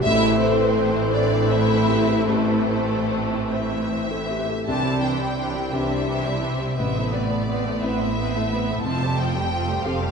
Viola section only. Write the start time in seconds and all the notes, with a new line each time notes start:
0.07 E3 C4
4.67 E3 D4
4.84 G3 C4
5.01 E3 D4
5.19 G3 C4
5.36 E3 D4
5.54 G3 C4
5.71 E3 D4
5.88 G3 C4
6.06 E3 D4
6.24 G3 C4
6.41 E3 D4
6.59 G3 C4
6.76 B3 C4
6.95 A3 B3
7.12 B3 C4
7.30 A3 B3
7.48 B3 C4
7.65 A3 B3
7.83 B3 C4
8.00 A3 B3
8.18 B3 C4
8.35 A3 B3
8.52 B3 C4
8.69 A3 B3
8.84 F3 C4
9.01 G3 A3
9.18 F3 C4
9.34 G3 A3
9.51 F3 C4
9.68 G3 A3
9.84 F3 C4
10.01 G3 A3